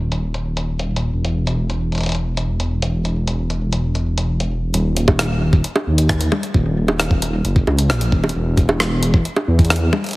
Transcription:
Already playing: D#1
0.12 closed hi-hat
0.34 closed hi-hat
0.57 closed hi-hat
0.79 closed hi-hat
0.96 closed hi-hat
1.13 E1
1.25 closed hi-hat
1.47 closed hi-hat
1.70 closed hi-hat
1.92 closed hi-hat
1.95 closed hi-hat
1.98 closed hi-hat
2.01 closed hi-hat
2.03 closed hi-hat
2.06 closed hi-hat
2.09 closed hi-hat
2.12 closed hi-hat
2.15 closed hi-hat
2.37 closed hi-hat
2.60 closed hi-hat
2.82 closed hi-hat
3.05 closed hi-hat
3.27 closed hi-hat
3.50 closed hi-hat
3.73 closed hi-hat
3.95 closed hi-hat
4.18 closed hi-hat
4.40 closed hi-hat
4.74 D#1, closed hi-hat
4.97 closed hi-hat
5.08 kick, high bongo
5.19 cross-stick, closed hi-hat
5.53 kick
5.64 closed hi-hat
5.76 high bongo
5.87 D#2
5.98 closed hi-hat
6.09 kick, cross-stick
6.21 closed hi-hat
6.32 high tom, high bongo
6.43 closed hi-hat
6.54 D#1, kick
6.88 high bongo
7.00 cross-stick, closed hi-hat
7.11 kick
7.22 closed hi-hat
7.45 F#1, closed hi-hat
7.56 kick
7.67 C#2, high bongo
7.79 closed hi-hat
7.90 A#1, cross-stick
8.01 closed hi-hat
8.12 D#1, kick
8.24 high bongo
8.29 closed hi-hat
8.35 E1
8.57 kick, closed hi-hat
8.69 high bongo
8.80 cross-stick, closed hi-hat
9.03 closed hi-hat
9.14 kick
9.25 closed hi-hat
9.36 high bongo
9.48 E2
9.59 kick, closed hi-hat
9.65 closed hi-hat
9.70 cross-stick, closed hi-hat
9.76 closed hi-hat
9.93 high tom, high bongo
10.04 closed hi-hat
10.06 closed hi-hat
10.09 closed hi-hat
10.11 closed hi-hat

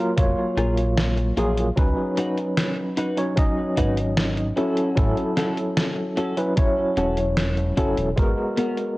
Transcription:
Already playing: F#3 A#3 F4
0.00 A#4
0.16 F1 F#3 A#3 F4 C#5, kick, closed hi-hat
0.57 A#1 F4 G#4 A#4, closed hi-hat
0.77 closed hi-hat
0.97 snare, closed hi-hat
1.17 closed hi-hat
1.37 A#1 F#3 A#3 F4 G#4 A#4, closed hi-hat
1.57 closed hi-hat
1.76 C#2 F#3 C#4 D#4 B4, kick, closed hi-hat
2.17 D#4 F#4 B4, closed hi-hat
2.38 closed hi-hat
2.57 snare, closed hi-hat
2.97 D#4 F#4 B4, closed hi-hat
3.17 F#3 C#4 D#4 C#5, closed hi-hat
3.36 F#3 C#4 D#4 D#5, kick, closed hi-hat
3.77 G#1 D#4 F#4 B4, kick, closed hi-hat
3.97 closed hi-hat
4.17 snare, closed hi-hat
4.37 closed hi-hat
4.56 F#3 C#4 E4 F#4 A4, closed hi-hat
4.77 closed hi-hat
4.96 A1 F#3 C#4 E4 A4, kick, closed hi-hat
5.17 closed hi-hat
5.37 C#4 F#4 A4, snare, closed hi-hat
5.57 closed hi-hat
5.77 snare, closed hi-hat
6.17 C#4 F#4 A4, closed hi-hat
6.37 F#3 C#4 E4 B4, closed hi-hat
6.56 F#3 C#4 E4 C#5, kick, closed hi-hat
6.97 E1 C#4 F#4 A4, closed hi-hat
7.17 closed hi-hat
7.37 snare, closed hi-hat
7.57 closed hi-hat
7.77 F#1 F#3 C#4 E4 F#4 A4, kick, closed hi-hat
7.97 E1, closed hi-hat
8.16 G#1 G#3 B3 F#4 A#4, kick, closed hi-hat
8.57 B3 F#4 A#4, closed hi-hat
8.77 closed hi-hat

